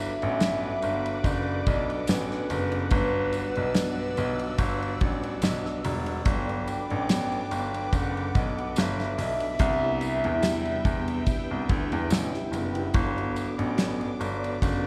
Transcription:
Already playing: F#3 B3 D4 F#4 A4 B4 E5 F#5 D6
0.22 A1 F#3 B3 D4, ride
0.40 G2 F#3 B3 D4, snare, ride, tambourine
0.82 G1 F#3 B3 D4, ride, tambourine
1.06 ride
1.24 F#1 D5, kick, ride, tambourine
1.66 B1 G2 F#3 B3 D4, kick, ride, tambourine
1.89 F#3 B3 D4, ride
2.07 A1 G2 F#3 B3 D4 B4, snare, ride, tambourine
2.31 F#3 B3 D4, snare
2.49 F#1 G2 F#3 B3 D4 B4, ride, tambourine
2.72 F#3 B3 D4, ride
2.89 G1 G2 F#3 G3 B3 D4 F#4 D5 E6, kick, ride
2.95 B4
3.33 ride, tambourine
3.55 B1 F#3 B3 D4, ride
3.74 G2 F#3 B3 D4, snare, ride, tambourine
4.16 B1 G2 F#3 B3 D4, ride, tambourine
4.39 ride
4.58 G1, kick, ride, tambourine
4.82 ride
4.99 A1 G2 F#3 B3 D4, kick, ride
5.23 F#3 B3 D4, ride
5.41 B1 G2 F#3 B3 D4, snare, ride, tambourine
5.65 F#3 B3 D4, snare
5.84 E1 G2 F#3 B3 D4, open hi-hat, ride, tambourine
6.06 F#3 B3 D4, ride
6.23 G1 G2 F#3 B3 D4 A4 B4 D5 D6, kick, hi-hat pedal, ride, tambourine
6.28 B4 G5
6.47 F#3 B3 D4, ride
6.67 ride, tambourine
6.89 A1 F#3 B3 D4, ride
7.08 G2 F#3 B3 D4, snare, ride, tambourine
7.32 ride
7.51 G1 F#3 B3 D4, ride, tambourine
7.74 ride
7.93 F#1 F#5, kick, ride, tambourine
8.17 ride
8.34 B1 G2 F#3 B3 D4, kick, ride, tambourine
8.57 F#3 B3 D4, ride
8.75 G1 G2 F#3 B3 D4, snare, ride, tambourine
8.79 E5
8.98 F#3 B3 D4, snare, ride
9.17 B1 G2 F#3 B3 D4 E5, open hi-hat, ride, tambourine
9.40 F#3 B3 D4, ride
9.57 C2 C3 G3 B3 D4 E4 G4 E5 G5, kick, hi-hat pedal, ride, tambourine
9.62 B4
9.82 G3 B3 E4
10.01 ride, tambourine
10.23 E2 G3 B3 E4, ride
10.41 C3 G3 B3 E4, snare, ride, tambourine
10.65 ride
10.83 E2 C3 G3 E4, kick, ride, tambourine
11.08 ride
11.26 kick, ride, tambourine
11.51 C2
11.68 D2 C3 G3 B3 E4, kick, ride
11.90 E2 G3 B3 E4, ride
12.10 A1 C3 G3 B3 E4, snare, ride, tambourine
12.33 G3 B3 E4, snare
12.52 F#1 C3 G3 B3 E4, ride, tambourine
12.75 G3 B3 E4, ride
12.92 G1 G2 F#3 B3 D4 F#4 A4 D6, kick, ride, tambourine
12.97 B4
13.16 F#3 D4, ride
13.36 ride, tambourine
13.57 A1 F#3 B3 D4, ride
13.76 G2 F#3 B3 D4, snare, ride, tambourine
14.01 ride
14.18 G1 F#3 B3 D4 D5, ride, tambourine
14.44 ride
14.62 F#1, kick, ride, tambourine

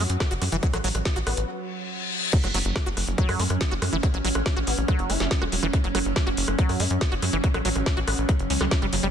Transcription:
Already playing: F#3 C#4 F#4 C#5 F#5
0.10 F#2, closed hi-hat
0.20 kick, cross-stick, snare, closed hi-hat
0.31 F#1 F#4, closed hi-hat
0.42 F#2 F#3, cross-stick, open hi-hat
0.52 F#1 E3, closed hi-hat
0.63 F#3, kick, closed hi-hat
0.73 A1 F#3, cross-stick, closed hi-hat
0.84 A1 F#3, open hi-hat
0.95 A1, cross-stick, closed hi-hat
1.05 kick, snare, closed hi-hat
1.16 A1 F#4, closed hi-hat
1.27 A1 B3, cross-stick, open hi-hat
1.37 A1, closed hi-hat
1.48 reverse cymbal
2.33 F#3 C#4, kick, closed hi-hat, crash, impact
2.44 F#1 F#3, cross-stick, closed hi-hat
2.54 F#1 F#3, open hi-hat
2.65 F#1, closed hi-hat
2.76 kick, cross-stick, snare, closed hi-hat
2.86 F#1 F#4, closed hi-hat
2.97 F#1, cross-stick, open hi-hat
3.07 F#1, closed hi-hat
3.18 F#3, kick, closed hi-hat
3.29 F#2, cross-stick, open hi-hat
3.39 F#2 A3, open hi-hat
3.50 F#2, cross-stick, closed hi-hat
3.61 kick, snare, closed hi-hat
3.71 F#1 F#4, closed hi-hat
3.82 F#2 F#3, cross-stick, open hi-hat
3.93 F#1 E3, closed hi-hat
4.03 F#3, kick, cross-stick, closed hi-hat
4.14 A1 F#3, closed hi-hat
4.25 A1 F#3, open hi-hat
4.35 A1, cross-stick, closed hi-hat
4.46 kick, snare, closed hi-hat
4.56 A1 F#4, cross-stick, closed hi-hat
4.67 A1 B3, open hi-hat
4.78 A1, closed hi-hat
4.88 F#3, kick, cross-stick, closed hi-hat
4.99 F#1, closed hi-hat
5.10 F#1 A3 E4, cross-stick, open hi-hat
5.20 F#1 E4, snare, closed hi-hat
5.31 kick, snare, closed hi-hat
5.41 E1 F#4, cross-stick, closed hi-hat
5.52 E1 F#3, open hi-hat
5.63 E1 E3, cross-stick, closed hi-hat
5.73 F#3, kick, closed hi-hat
5.84 F#1 F#3, closed hi-hat
5.95 F#1 F#3, cross-stick, open hi-hat
6.05 F#1, closed hi-hat
6.16 kick, cross-stick, snare, closed hi-hat
6.27 F#1 F#4, closed hi-hat
6.37 F#1, open hi-hat
6.48 F#1, cross-stick, closed hi-hat
6.59 F#3, kick, closed hi-hat
6.69 F#2, cross-stick, open hi-hat
6.80 F#2 A3, open hi-hat
6.90 F#2, closed hi-hat
7.01 kick, cross-stick, snare, closed hi-hat
7.12 F#1 F#4, closed hi-hat
7.22 F#2 F#3, cross-stick, open hi-hat
7.33 F#1 E3, closed hi-hat
7.44 F#3, kick, closed hi-hat
7.54 A1 F#3, cross-stick, closed hi-hat
7.65 A1 F#3, open hi-hat
7.76 A1, cross-stick, closed hi-hat
7.86 kick, snare, closed hi-hat
7.97 A1 F#4, closed hi-hat
8.07 A1 B3, cross-stick, open hi-hat
8.18 A1, closed hi-hat
8.29 F#3, kick, cross-stick, closed hi-hat
8.39 F#1, closed hi-hat
8.50 C#2 C#4, open hi-hat
8.61 C#2 G3, cross-stick, snare
8.71 kick, snare, closed hi-hat
8.82 F#1 G3, cross-stick, closed hi-hat
8.93 F#1 F#3, open hi-hat
9.03 F#1 G3, closed hi-hat

